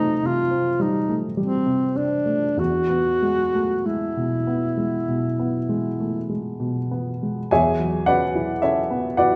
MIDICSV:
0, 0, Header, 1, 3, 480
1, 0, Start_track
1, 0, Tempo, 1132075
1, 584, Tempo, 1212121
1, 1063, Time_signature, 4, 2, 24, 8
1, 1064, Tempo, 1271186
1, 1544, Tempo, 1214575
1, 2984, Tempo, 1111111
1, 3785, End_track
2, 0, Start_track
2, 0, Title_t, "Alto saxophone"
2, 0, Program_c, 0, 65
2, 0, Note_on_c, 0, 63, 56
2, 113, Note_on_c, 0, 65, 53
2, 119, Note_off_c, 0, 63, 0
2, 349, Note_on_c, 0, 63, 49
2, 356, Note_off_c, 0, 65, 0
2, 503, Note_off_c, 0, 63, 0
2, 589, Note_on_c, 0, 60, 50
2, 819, Note_on_c, 0, 62, 51
2, 824, Note_off_c, 0, 60, 0
2, 1065, Note_on_c, 0, 66, 57
2, 1070, Note_off_c, 0, 62, 0
2, 1545, Note_on_c, 0, 64, 42
2, 1551, Note_off_c, 0, 66, 0
2, 2503, Note_off_c, 0, 64, 0
2, 3785, End_track
3, 0, Start_track
3, 0, Title_t, "Grand piano"
3, 0, Program_c, 1, 0
3, 0, Control_c, 1, 64, 127
3, 0, Note_on_c, 1, 41, 40
3, 0, Note_on_c, 1, 48, 36
3, 0, Note_on_c, 1, 55, 35
3, 0, Note_on_c, 1, 57, 36
3, 0, Note_on_c, 1, 60, 37
3, 52, Note_off_c, 1, 60, 0
3, 84, Note_off_c, 1, 41, 0
3, 97, Note_off_c, 1, 48, 0
3, 97, Note_on_c, 1, 48, 34
3, 172, Note_off_c, 1, 57, 0
3, 216, Note_on_c, 1, 60, 30
3, 291, Note_off_c, 1, 48, 0
3, 338, Note_off_c, 1, 55, 0
3, 338, Note_on_c, 1, 55, 36
3, 412, Note_off_c, 1, 60, 0
3, 461, Note_on_c, 1, 57, 27
3, 533, Note_off_c, 1, 55, 0
3, 581, Note_on_c, 1, 55, 30
3, 583, Note_off_c, 1, 57, 0
3, 696, Note_on_c, 1, 48, 28
3, 768, Note_off_c, 1, 55, 0
3, 812, Note_on_c, 1, 60, 31
3, 887, Note_off_c, 1, 48, 0
3, 933, Note_on_c, 1, 57, 28
3, 1011, Note_off_c, 1, 60, 0
3, 1057, Note_on_c, 1, 40, 35
3, 1061, Note_off_c, 1, 57, 0
3, 1070, Control_c, 1, 64, 0
3, 1150, Control_c, 1, 64, 127
3, 1180, Note_on_c, 1, 59, 29
3, 1303, Note_on_c, 1, 56, 30
3, 1376, Note_off_c, 1, 59, 0
3, 1423, Note_on_c, 1, 57, 26
3, 1495, Note_off_c, 1, 56, 0
3, 1542, Note_off_c, 1, 57, 0
3, 1543, Note_on_c, 1, 56, 26
3, 1665, Note_on_c, 1, 47, 28
3, 1737, Note_off_c, 1, 56, 0
3, 1786, Note_on_c, 1, 59, 25
3, 1858, Note_off_c, 1, 47, 0
3, 1905, Note_on_c, 1, 56, 26
3, 1978, Note_off_c, 1, 59, 0
3, 2007, Note_off_c, 1, 40, 0
3, 2026, Note_on_c, 1, 47, 24
3, 2097, Note_off_c, 1, 56, 0
3, 2150, Note_on_c, 1, 59, 27
3, 2217, Note_off_c, 1, 47, 0
3, 2267, Note_on_c, 1, 56, 30
3, 2338, Note_off_c, 1, 59, 0
3, 2390, Note_on_c, 1, 57, 23
3, 2456, Note_off_c, 1, 56, 0
3, 2506, Note_off_c, 1, 57, 0
3, 2506, Note_on_c, 1, 56, 24
3, 2626, Note_on_c, 1, 47, 28
3, 2698, Note_off_c, 1, 56, 0
3, 2751, Note_on_c, 1, 59, 29
3, 2821, Note_off_c, 1, 47, 0
3, 2874, Note_on_c, 1, 56, 26
3, 2939, Note_off_c, 1, 59, 0
3, 2986, Note_off_c, 1, 56, 0
3, 2988, Note_on_c, 1, 80, 70
3, 2990, Control_c, 1, 64, 0
3, 2992, Note_on_c, 1, 40, 48
3, 2992, Note_on_c, 1, 68, 54
3, 2992, Note_on_c, 1, 73, 50
3, 2992, Note_on_c, 1, 76, 55
3, 3076, Control_c, 1, 64, 127
3, 3109, Note_on_c, 1, 54, 37
3, 3214, Note_off_c, 1, 68, 0
3, 3214, Note_off_c, 1, 73, 0
3, 3215, Note_off_c, 1, 76, 0
3, 3226, Note_on_c, 1, 78, 71
3, 3229, Note_off_c, 1, 80, 0
3, 3229, Note_on_c, 1, 61, 39
3, 3229, Note_on_c, 1, 74, 50
3, 3231, Note_on_c, 1, 66, 54
3, 3232, Note_on_c, 1, 71, 51
3, 3301, Note_off_c, 1, 54, 0
3, 3351, Note_on_c, 1, 64, 37
3, 3420, Note_off_c, 1, 61, 0
3, 3451, Note_off_c, 1, 74, 0
3, 3452, Note_off_c, 1, 66, 0
3, 3453, Note_off_c, 1, 71, 0
3, 3465, Note_on_c, 1, 76, 62
3, 3466, Note_off_c, 1, 78, 0
3, 3471, Note_on_c, 1, 61, 37
3, 3471, Note_on_c, 1, 69, 44
3, 3472, Note_on_c, 1, 73, 52
3, 3540, Note_off_c, 1, 64, 0
3, 3590, Note_on_c, 1, 59, 37
3, 3659, Note_off_c, 1, 61, 0
3, 3690, Note_off_c, 1, 69, 0
3, 3691, Note_off_c, 1, 73, 0
3, 3704, Note_off_c, 1, 76, 0
3, 3705, Note_on_c, 1, 78, 68
3, 3708, Note_on_c, 1, 71, 51
3, 3709, Note_on_c, 1, 64, 41
3, 3709, Note_on_c, 1, 66, 52
3, 3710, Note_on_c, 1, 74, 56
3, 3777, Note_off_c, 1, 59, 0
3, 3785, Note_off_c, 1, 40, 0
3, 3785, Note_off_c, 1, 64, 0
3, 3785, Note_off_c, 1, 66, 0
3, 3785, Note_off_c, 1, 71, 0
3, 3785, Note_off_c, 1, 74, 0
3, 3785, Note_off_c, 1, 78, 0
3, 3785, End_track
0, 0, End_of_file